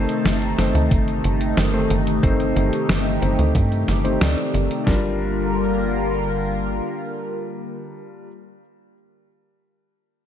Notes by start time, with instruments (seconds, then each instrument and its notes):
Already playing: analog synth pad C3 D#3 A3 D#4 A5, electric grand piano A3 C4 D#4 C5
0.09 closed hi-hat
0.25 analog synth bass G1, snare, closed hi-hat
0.42 closed hi-hat
0.58 analog synth bass G1, electric grand piano A3 C4 D#4 C5, snare, closed hi-hat
0.75 analog synth bass D2, closed hi-hat
0.91 analog synth bass G1, kick, closed hi-hat
1.08 closed hi-hat
1.24 analog synth bass G1, closed hi-hat
1.41 closed hi-hat
1.57 analog synth bass G1, snare, closed hi-hat
1.73 electric grand piano A3 C4 D#4 C5
1.90 analog synth bass G1, closed hi-hat
2.07 closed hi-hat
2.23 analog synth bass G1, electric grand piano A3 C4 D#4 C5, analog synth pad G4, kick, closed hi-hat
2.40 closed hi-hat
2.56 analog synth bass G1, closed hi-hat
2.73 closed hi-hat
2.89 analog synth bass G1, snare, closed hi-hat
3.06 closed hi-hat
3.22 analog synth bass G1, electric grand piano A3 C4 D#4 C5, closed hi-hat
3.39 analog synth bass D2, closed hi-hat
3.55 analog synth bass G2, kick, closed hi-hat
3.72 closed hi-hat
3.88 analog synth bass G1, snare, closed hi-hat
4.04 electric grand piano A3 C4 D#4 C5, closed hi-hat
4.21 analog synth bass D2, electric grand piano A3 C4 D#4 D5, snare, closed hi-hat
4.38 closed hi-hat
4.54 analog synth bass G1, closed hi-hat
4.71 closed hi-hat
4.86 analog synth bass G1, analog synth pad D3 G3 A#3 F4 A#4, electric grand piano G3 D4 F4 A#4, kick, snare